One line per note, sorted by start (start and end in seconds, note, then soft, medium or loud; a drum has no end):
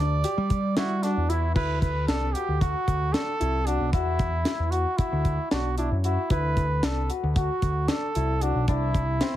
0.00 0.23 D2 medium
0.00 0.14 D4 medium
0.00 0.73 D5 medium
0.24 0.56 G4 medium
0.24 closed hi-hat medium
0.38 0.75 G3 medium
0.50 kick medium
0.50 closed hi-hat medium
0.77 1.14 G3 medium
0.77 0.93 E4 medium
0.77 1.05 F#4 medium
0.77 snare loud
0.77 closed hi-hat medium
1.03 1.31 D4 medium
1.03 1.19 F#4 medium
1.03 snare soft
1.03 closed hi-hat medium
1.17 1.54 E2 medium
1.29 1.45 E4 medium
1.29 1.54 E4 medium
1.29 closed hi-hat medium
1.55 2.05 D2 medium
1.55 1.87 E4 medium
1.55 1.80 B4 medium
1.55 kick medium
1.55 crash medium
1.81 2.06 B4 medium
1.81 kick medium
1.81 closed hi-hat medium
2.07 2.33 C2 medium
2.07 2.24 D4 medium
2.07 2.34 A4 medium
2.07 snare loud
2.07 closed hi-hat medium
2.33 2.51 F#4 medium
2.33 2.62 G4 medium
2.33 closed hi-hat medium
2.48 2.73 D2 medium
2.61 3.15 F#4 medium
2.61 2.93 F#4 medium
2.61 kick medium
2.61 closed hi-hat medium
2.88 3.13 D2 medium
2.88 kick medium
2.88 closed hi-hat medium
3.13 3.30 D4 medium
3.13 3.68 A4 loud
3.13 snare loud
3.13 closed hi-hat medium
3.40 3.78 C2 medium
3.40 3.56 E4 medium
3.40 closed hi-hat medium
3.66 3.92 D4 medium
3.66 3.83 F#4 medium
3.66 closed hi-hat medium
3.80 3.93 B1 medium
3.93 4.18 E2 medium
3.93 4.73 E4 medium
3.93 4.26 F#4 medium
3.93 kick medium
3.93 closed hi-hat medium
4.19 4.45 E2 medium
4.19 kick medium
4.19 closed hi-hat medium
4.45 4.62 E4 medium
4.45 snare loud
4.45 closed hi-hat medium
4.59 4.84 E2 medium
4.71 4.99 F#4 medium
4.71 4.89 F#4 medium
4.71 closed hi-hat medium
4.97 5.51 E4 medium
4.97 5.31 F#4 medium
4.97 kick medium
4.97 closed hi-hat medium
5.12 5.37 D2 medium
5.25 kick medium
5.25 closed hi-hat soft
5.51 5.89 B1 medium
5.51 5.67 D4 medium
5.51 5.76 F#4 medium
5.51 snare loud
5.51 closed hi-hat medium
5.78 5.90 D4 medium
5.78 5.94 E4 medium
5.78 closed hi-hat medium
5.91 6.16 F#2 medium
6.04 6.29 E4 medium
6.04 6.20 F#4 medium
6.04 closed hi-hat medium
6.30 6.80 D2 medium
6.30 6.63 E4 medium
6.30 6.86 B4 medium
6.30 kick medium
6.30 closed hi-hat medium
6.57 kick medium
6.57 closed hi-hat medium
6.83 7.08 C2 medium
6.83 6.99 D4 medium
6.83 7.11 A4 medium
6.83 snare loud
6.83 closed hi-hat medium
7.10 7.26 F#4 medium
7.10 closed hi-hat medium
7.23 7.48 D2 medium
7.36 7.68 F#4 medium
7.36 7.90 F#4 medium
7.36 kick medium
7.36 closed hi-hat medium
7.62 7.88 D2 medium
7.62 kick medium
7.62 closed hi-hat medium
7.88 8.05 D4 medium
7.88 8.44 A4 medium
7.88 snare loud
7.88 closed hi-hat medium
8.15 8.53 C2 medium
8.15 8.32 E4 medium
8.15 closed hi-hat medium
8.41 8.68 D4 medium
8.41 8.58 F#4 medium
8.41 closed hi-hat medium
8.55 8.68 B1 medium
8.68 8.93 C2 medium
8.68 9.00 D4 medium
8.68 9.36 E4 medium
8.68 kick medium
8.68 closed hi-hat medium
8.94 9.20 C2 medium
8.94 kick medium
8.94 closed hi-hat medium
9.21 9.36 C4 medium
9.21 snare loud
9.21 closed hi-hat medium